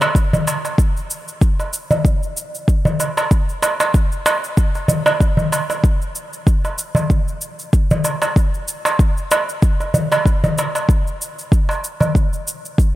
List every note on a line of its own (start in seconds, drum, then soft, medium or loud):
0.01 darbuka ka medium
0.01 darbuka tek medium
0.01 cabasa soft
0.15 kick medium
0.15 cabasa soft
0.33 darbuka dum medium
0.33 cabasa soft
0.47 darbuka ka medium
0.47 cabasa medium
0.65 darbuka ka soft
0.65 cabasa soft
0.78 kick loud
0.78 cabasa soft
0.97 cabasa soft
1.10 cabasa medium
1.28 cabasa soft
1.41 kick loud
1.41 cabasa soft
1.60 darbuka ka soft
1.60 cabasa soft
1.73 cabasa medium
1.91 darbuka ka soft
1.91 darbuka tek soft
1.91 darbuka dum medium
1.91 cabasa soft
2.05 kick loud
2.05 cabasa soft
2.23 cabasa soft
2.37 cabasa medium
2.55 cabasa soft
2.68 kick medium
2.68 cabasa soft
2.85 darbuka dum medium
2.85 cabasa soft
3.00 darbuka ka soft
3.00 cabasa medium
3.17 darbuka ka soft
3.17 darbuka tek medium
3.17 cabasa soft
3.31 kick medium
3.31 cabasa soft
3.49 cabasa soft
3.63 darbuka tek medium
3.63 cabasa medium
3.80 darbuka tek medium
3.80 cabasa soft
3.94 kick medium
3.94 cabasa soft
4.12 cabasa soft
4.26 darbuka tek medium
4.26 cabasa medium
4.44 cabasa soft
4.57 kick loud
4.57 cabasa soft
4.75 darbuka ka soft
4.75 cabasa soft
4.88 darbuka dum medium
4.88 cabasa medium
5.06 darbuka ka medium
5.06 darbuka tek medium
5.06 cabasa soft
5.20 kick medium
5.20 cabasa soft
5.37 darbuka dum medium
5.37 cabasa soft
5.52 darbuka ka medium
5.52 cabasa medium
5.70 darbuka ka soft
5.70 cabasa soft
5.84 kick loud
5.84 cabasa soft
6.02 cabasa soft
6.15 cabasa medium
6.33 cabasa soft
6.47 kick loud
6.47 cabasa soft
6.65 darbuka ka soft
6.65 cabasa soft
6.78 cabasa medium
6.95 darbuka ka soft
6.95 darbuka tek soft
6.95 darbuka dum medium
6.95 cabasa soft
7.10 kick loud
7.10 cabasa soft
7.28 cabasa soft
7.41 cabasa medium
7.59 cabasa soft
7.73 kick medium
7.73 cabasa soft
7.91 darbuka dum medium
7.91 cabasa soft
8.04 darbuka ka medium
8.04 cabasa medium
8.22 darbuka ka soft
8.22 darbuka tek soft
8.22 cabasa soft
8.36 kick medium
8.36 cabasa soft
8.54 cabasa soft
8.68 cabasa medium
8.85 darbuka tek medium
8.85 cabasa soft
8.99 kick medium
8.99 cabasa soft
9.17 cabasa soft
9.31 darbuka tek medium
9.31 cabasa medium
9.49 cabasa soft
9.62 kick loud
9.62 cabasa soft
9.80 darbuka ka soft
9.80 cabasa soft
9.94 darbuka dum medium
9.94 cabasa medium
10.12 darbuka ka medium
10.12 darbuka tek medium
10.12 cabasa soft
10.26 kick medium
10.26 cabasa soft
10.44 darbuka dum medium
10.44 cabasa soft
10.58 darbuka ka medium
10.58 cabasa medium
10.75 darbuka ka medium
10.75 cabasa soft
10.89 kick medium
10.89 cabasa soft
11.07 cabasa soft
11.22 cabasa medium
11.39 cabasa soft
11.52 kick medium
11.52 cabasa soft
11.69 darbuka ka soft
11.69 cabasa soft
11.84 cabasa medium
12.00 darbuka ka soft
12.00 darbuka tek soft
12.00 darbuka dum medium
12.00 cabasa soft
12.15 kick medium
12.15 cabasa soft
12.33 cabasa soft
12.48 cabasa medium
12.65 cabasa soft
12.78 kick medium
12.78 cabasa soft